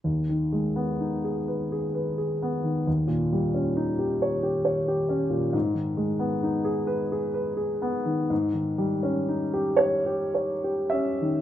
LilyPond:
\new Staff \with { instrumentName = "Grand piano" } { \time 12/8 \key gis \minor \tempo 4. = 43 << { r1. | r1 r8 cis''4 e''8 | } \\ { dis,16 dis16 gis16 b16 dis'16 gis'16 b'16 gis'16 b'16 gis'16 b16 dis16 dis,16 ais,16 g16 cis'16 dis'16 g'16 cis''16 g'16 cis''16 g'16 cis'16 ais,16 | gis,16 dis16 gis16 b16 dis'16 gis'16 b'16 gis'16 b'16 gis'16 b16 dis16 gis,16 dis16 g16 cis'16 dis'16 g'16 cis''16 g'16 cis''16 g'16 cis'16 dis16 | } >> }